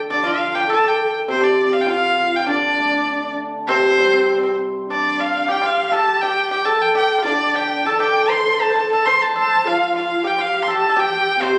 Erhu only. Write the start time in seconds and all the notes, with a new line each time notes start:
0.11 D5
0.27 F5
0.55 G5
0.71 A5
0.87 G5
1.30 C5
1.44 D5
1.73 F5
1.81 G5
1.89 F5
2.36 G5
2.48 D5
3.67 C5
4.91 D5
5.20 F5
5.51 G5
5.66 F5
5.93 A5
6.21 G5
6.50 G5
6.65 A5
6.81 G5
6.96 G5
7.24 D5
7.56 G5
7.85 A5
8.00 G5
8.30 C6
8.61 A5
8.91 A5
9.05 C6
9.22 A5
9.38 A5
9.67 F5
9.96 F5
10.27 G5
10.41 F5
10.63 C6
10.70 A5
10.99 G5
11.43 C5